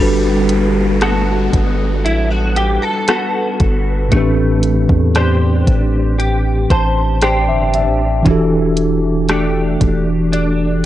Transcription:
0.00 1.49 G1 loud
0.00 4.06 G3 medium
0.00 4.11 G3 medium
0.00 0.38 D4 medium
0.00 4.07 D4 medium
0.00 4.08 F#4 medium
0.00 4.09 A4 medium
0.00 4.10 B4 medium
0.00 downlifter medium
0.49 closed hi-hat medium
1.01 3.08 B3 medium
1.01 2.04 F#4 medium
1.01 2.56 A4 medium
1.01 cross-stick loud
1.01 closed hi-hat medium
1.53 2.06 G1 medium
1.53 kick medium
1.53 closed hi-hat medium
2.05 2.79 A1 medium
2.05 2.31 E4 medium
2.05 closed hi-hat medium
2.31 3.07 F#4 medium
2.56 2.82 G4 medium
2.56 closed hi-hat medium
2.82 3.08 A4 medium
3.08 5.15 B3 medium
3.08 4.22 F#4 medium
3.08 5.16 A4 medium
3.08 cross-stick loud
3.08 closed hi-hat medium
3.60 4.10 G1 loud
3.60 kick medium
3.60 closed hi-hat medium
4.09 4.86 A1 loud
4.09 8.20 A2 medium
4.09 8.21 E3 medium
4.09 8.25 A3 medium
4.09 4.18 B3 medium
4.09 kick loud
4.09 closed hi-hat medium
4.14 8.22 D4 medium
4.14 8.23 G4 medium
4.14 8.24 B4 medium
4.18 8.25 C4 medium
4.63 closed hi-hat medium
4.89 5.64 E2 loud
4.89 kick medium
5.15 7.22 D4 medium
5.15 6.18 G4 medium
5.15 6.69 C5 medium
5.15 cross-stick loud
5.15 closed hi-hat medium
5.67 6.66 A1 loud
5.67 kick medium
5.67 closed hi-hat medium
6.19 7.22 G4 medium
6.19 closed hi-hat medium
6.70 7.50 A1 loud
6.70 7.22 C5 medium
6.70 7.19 A5 medium
6.70 kick loud
6.70 closed hi-hat medium
7.21 9.29 D4 medium
7.21 9.30 G4 medium
7.21 8.36 C5 medium
7.21 7.47 G5 medium
7.21 cross-stick loud
7.21 closed hi-hat medium
7.48 7.88 G1 loud
7.48 7.72 E5 medium
7.74 8.23 E5 medium
7.74 closed hi-hat medium
7.87 8.24 A1 loud
8.22 9.77 E1 loud
8.22 10.86 E3 medium
8.22 10.86 D4 medium
8.22 kick loud
8.22 closed hi-hat medium
8.27 10.86 F#4 medium
8.27 10.86 G4 medium
8.31 10.86 A4 medium
8.77 closed hi-hat medium
9.29 10.86 A3 medium
9.29 10.32 D4 medium
9.29 10.84 G4 medium
9.29 cross-stick loud
9.29 closed hi-hat medium
9.81 10.86 E1 loud
9.81 kick medium
9.81 closed hi-hat medium
10.32 10.86 D4 medium
10.32 closed hi-hat medium

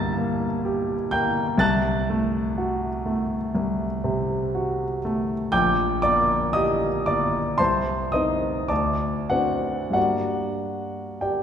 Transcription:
0.00 0.45 G2 medium
0.00 0.17 A#3 medium
0.00 0.65 G4 medium
0.00 1.09 A5 medium
0.00 1.64 A#5 medium
0.00 1.12 A6 loud
0.00 1.63 A#6 medium
0.17 0.94 A#3 medium
0.65 1.42 G4 soft
1.11 1.61 A#3 medium
1.11 1.57 G5 medium
1.11 1.60 G6 medium
1.58 3.49 C2 medium
1.58 4.99 A5 medium
1.58 4.99 F#6 medium
1.58 5.02 A6 medium
2.10 2.87 A3 medium
2.58 3.35 F#4 medium
3.06 3.84 A3 soft
3.55 5.48 C2 medium
4.04 4.84 C3 medium
4.55 5.33 F#4 soft
5.05 5.53 A3 medium
5.52 7.56 A#1 medium
5.52 5.99 G5 medium
5.52 5.99 D6 medium
5.52 6.03 G6 medium
6.02 6.86 A#3 soft
6.02 6.51 D5 medium
6.02 6.54 D6 medium
6.53 7.39 G4 medium
6.53 7.03 D#5 medium
6.53 7.06 D#6 medium
7.06 7.60 A#3 soft
7.06 7.56 D5 medium
7.06 7.59 D6 medium
7.58 8.67 C2 medium
7.58 8.09 C5 medium
7.58 8.09 A5 medium
7.58 8.12 C6 medium
8.12 8.66 C4 soft
8.12 8.66 D#4 soft
8.12 8.66 D#5 medium
8.12 8.69 D#6 medium
8.68 9.92 D2 soft
8.68 9.27 D5 soft
8.68 9.27 A5 medium
8.68 9.30 D6 medium
9.30 9.92 C4 soft
9.30 9.92 D4 soft
9.30 9.91 F#4 soft
9.30 9.92 F#5 medium
9.90 11.43 G2 soft
9.90 11.43 G3 soft
9.90 11.43 A#3 soft
9.90 11.43 D4 soft
9.90 11.21 F#5 medium
9.95 11.18 F#4 medium
9.95 11.18 D5 soft
11.21 11.43 G4 soft
11.21 11.43 D5 soft
11.21 11.43 G5 soft

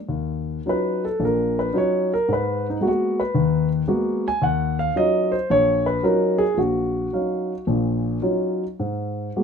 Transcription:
0.09 0.58 D#2 medium
0.66 1.05 F#3 soft
0.66 1.05 C#4 soft
0.66 1.05 D#4 soft
0.66 1.05 F4 soft
0.66 1.04 B4 medium
1.05 1.22 A4 medium
1.20 1.68 A#1 medium
1.20 1.68 A#2 medium
1.25 1.58 A#4 medium
1.59 1.76 B4 medium
1.74 2.12 F#3 medium
1.74 2.12 C#4 medium
1.74 2.12 D#4 medium
1.74 2.13 F4 medium
1.78 2.12 C#5 medium
2.14 2.30 A#4 medium
2.28 2.75 G#2 medium
2.33 2.66 B4 medium
2.70 2.85 D#4 medium
2.81 3.19 G#3 soft
2.81 3.19 A#3 soft
2.81 3.20 B3 soft
2.81 2.87 F#4 medium
2.88 3.20 F#4 medium
3.20 3.68 B4 medium
3.34 3.81 D#2 medium
3.34 3.81 D#3 medium
3.88 4.26 G#3 medium
3.88 4.26 A#3 medium
3.88 4.26 B3 medium
3.88 4.26 F#4 medium
4.28 4.43 G#5 medium
4.42 4.89 D#2 medium
4.42 4.78 F#5 medium
4.79 4.96 F5 medium
4.96 5.34 F#3 medium
4.96 5.34 C#4 medium
4.96 5.34 D#4 soft
4.96 5.34 F4 medium
4.96 5.32 D#5 medium
5.32 5.49 C5 medium
5.50 5.97 A#1 medium
5.50 5.86 C#5 loud
5.86 6.04 B4 medium
6.03 6.42 F#3 medium
6.03 6.42 C#4 medium
6.03 6.43 D#4 medium
6.03 6.43 F4 medium
6.03 6.40 A#4 medium
6.38 6.57 G#4 medium
6.54 7.06 A#1 medium
6.54 6.59 F4 soft
6.59 7.64 F#4 medium
7.13 7.52 F#3 soft
7.13 7.52 C#4 soft
7.13 7.52 D#4 soft
7.13 7.52 F5 soft
7.67 8.17 A#1 medium
7.67 8.17 A#2 medium
8.22 8.63 F#3 medium
8.22 8.63 C#4 soft
8.22 8.63 D#4 soft
8.22 8.63 F4 medium
8.79 9.29 G#2 medium
9.36 9.44 G#3 medium
9.36 9.44 A#3 soft
9.36 9.44 B3 soft
9.36 9.44 F#4 soft

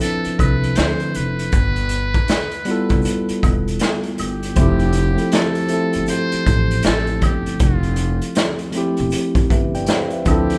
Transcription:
0.00 1.55 F3 medium
0.00 1.55 C4 medium
0.00 1.55 D4 medium
0.00 1.55 E4 medium
0.00 1.54 A4 loud
0.00 0.41 A4 loud
0.00 1.54 B4 medium
0.00 1.55 E5 medium
0.00 closed hi-hat medium
0.24 muted upright bass stroke soft
0.24 closed hi-hat soft
0.39 0.74 C2 medium
0.39 0.78 B4 medium
0.39 kick loud
0.39 closed hi-hat medium
0.39 high woodblock medium
0.39 shaker medium
0.64 closed hi-hat soft
0.75 1.18 D2 loud
0.75 1.17 C5 loud
0.75 snare loud
0.75 closed hi-hat medium
0.75 shaker medium
1.00 closed hi-hat soft
1.15 1.50 F1 medium
1.15 3.81 B4 loud
1.15 closed hi-hat medium
1.15 shaker soft
1.39 closed hi-hat soft
1.52 2.11 G1 medium
1.52 kick loud
1.52 closed hi-hat medium
1.52 shaker medium
1.76 closed hi-hat soft
1.89 closed hi-hat medium
1.89 shaker soft
2.14 kick medium
2.14 closed hi-hat soft
2.28 snare loud
2.28 closed hi-hat medium
2.28 shaker medium
2.51 closed hi-hat soft
2.65 3.66 G3 loud
2.65 3.66 B3 medium
2.65 3.67 E4 medium
2.65 closed hi-hat medium
2.65 shaker soft
2.70 3.68 F4 medium
2.70 3.69 A4 medium
2.89 3.04 F1 medium
2.89 kick medium
2.89 closed hi-hat soft
3.02 closed hi-hat medium
3.02 shaker medium
3.29 muted upright bass stroke soft
3.29 closed hi-hat soft
3.43 3.78 E1 medium
3.43 kick medium
3.43 closed hi-hat medium
3.43 high woodblock medium
3.43 shaker soft
3.68 closed hi-hat soft
3.79 snare loud
3.79 closed hi-hat medium
3.79 shaker medium
4.03 closed hi-hat soft
4.18 4.54 G1 medium
4.18 5.36 G4 medium
4.18 closed hi-hat medium
4.18 high woodblock medium
4.18 shaker soft
4.43 closed hi-hat soft
4.56 5.14 F1 loud
4.56 4.93 F3 loud
4.56 4.93 A3 loud
4.56 4.94 C4 medium
4.56 kick loud
4.56 closed hi-hat medium
4.56 shaker medium
4.60 4.95 E4 medium
4.60 4.95 G4 loud
4.79 closed hi-hat soft
4.93 closed hi-hat medium
4.93 shaker medium
5.15 5.52 F3 medium
5.15 5.52 A3 medium
5.15 5.53 C4 medium
5.15 closed hi-hat soft
5.19 5.54 E4 medium
5.19 5.54 A4 medium
5.32 6.09 A4 medium
5.32 snare loud
5.32 closed hi-hat medium
5.32 shaker medium
5.55 closed hi-hat soft
5.68 6.69 F3 medium
5.68 6.70 A3 medium
5.68 6.70 C4 medium
5.68 closed hi-hat medium
5.68 shaker medium
5.73 6.71 E4 medium
5.73 6.72 A4 medium
5.93 6.08 G1 medium
5.93 closed hi-hat soft
6.06 6.81 C5 loud
6.06 closed hi-hat medium
6.06 shaker medium
6.32 muted upright bass stroke soft
6.32 closed hi-hat soft
6.46 6.81 A1 loud
6.46 kick loud
6.46 closed hi-hat medium
6.46 shaker medium
6.71 closed hi-hat soft
6.83 7.20 A1 medium
6.83 7.26 A4 loud
6.83 snare loud
6.83 closed hi-hat medium
6.83 shaker medium
7.07 closed hi-hat soft
7.22 7.57 G1 medium
7.22 7.63 G4 medium
7.22 kick medium
7.22 closed hi-hat medium
7.22 high woodblock medium
7.22 shaker soft
7.46 closed hi-hat soft
7.60 8.18 F1 medium
7.60 8.37 F4 medium
7.60 kick loud
7.60 closed hi-hat medium
7.60 shaker medium
7.83 closed hi-hat soft
7.96 closed hi-hat medium
7.96 shaker soft
8.22 closed hi-hat soft
8.35 snare loud
8.35 closed hi-hat medium
8.35 shaker medium
8.59 closed hi-hat soft
8.72 9.73 F3 medium
8.72 9.74 A3 medium
8.72 9.74 C4 medium
8.72 closed hi-hat medium
8.72 shaker soft
8.76 9.75 E4 medium
8.76 9.76 G4 loud
8.97 9.12 E1 medium
8.97 closed hi-hat soft
9.10 closed hi-hat medium
9.10 shaker medium
9.35 muted upright bass stroke soft
9.35 kick loud
9.35 closed hi-hat medium
9.50 9.85 G1 medium
9.50 9.73 B4 medium
9.50 9.73 E5 medium
9.50 kick medium
9.50 closed hi-hat medium
9.50 shaker medium
9.75 9.88 D5 medium
9.75 9.88 G5 medium
9.75 closed hi-hat soft
9.86 10.11 C5 medium
9.86 10.11 F5 medium
9.86 snare loud
9.86 closed hi-hat medium
9.86 shaker medium
10.10 10.49 B4 medium
10.10 10.49 E5 medium
10.10 closed hi-hat soft
10.25 10.58 D2 medium
10.25 10.58 F3 medium
10.25 10.58 C4 medium
10.25 10.58 D4 medium
10.25 10.58 G4 loud
10.25 kick medium
10.25 closed hi-hat medium
10.25 high woodblock medium
10.25 shaker soft
10.30 10.58 E4 medium
10.30 10.58 A4 loud
10.50 closed hi-hat soft

